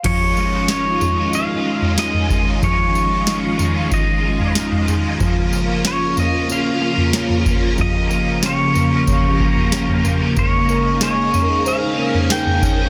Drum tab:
CC |x---------------|----------------|----------------|----------------|
TB |x-x-x-x-x---x-x-|x-x-x-x-x---x-x-|x-x-x-x-x---x-x-|x-x-x-x-x---x-x-|
SD |----o-------o---|----o-------o---|----o-------o---|----o-------o---|
FT |o-----o----o-oo-|o-----o----o-oo-|o-----o----o-oo-|o-----o-o--o-oo-|
BD |o-------------o-|o-------o-------|o-------------o-|o-------o-o-----|

CC |----------------|
TB |x-x-x-x-x---x-x-|
SD |----o-------o---|
FT |o-----o----o-oo-|
BD |o-------------o-|